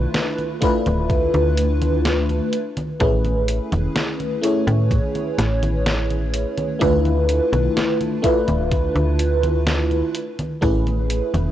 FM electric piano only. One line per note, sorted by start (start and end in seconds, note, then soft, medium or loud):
0.00 0.56 A3 medium
0.00 0.56 D4 medium
0.00 0.57 E4 medium
0.00 0.57 F4 medium
0.00 0.57 B4 loud
0.61 2.49 A3 medium
0.61 2.50 D4 medium
0.61 2.50 E4 medium
0.61 2.50 F4 medium
0.61 2.51 B4 loud
3.00 3.25 A3 medium
3.00 3.26 C#4 medium
3.00 3.26 E4 medium
3.00 3.26 G#4 medium
3.00 3.26 B4 medium
4.41 6.75 A3 medium
4.41 6.75 C#4 medium
4.41 6.75 E4 medium
4.41 6.76 G#4 medium
4.41 6.76 C#5 medium
6.79 8.18 A3 medium
6.79 8.18 D4 medium
6.79 8.18 E4 medium
6.79 8.19 F4 medium
6.79 8.19 B4 loud
8.22 10.11 A3 medium
8.22 10.11 D4 medium
8.22 10.12 E4 medium
8.22 10.12 F4 medium
8.22 10.12 B4 loud
10.61 10.87 A3 medium
10.61 10.87 C#4 medium
10.61 10.87 E4 medium
10.61 10.88 G#4 medium
10.61 10.88 B4 medium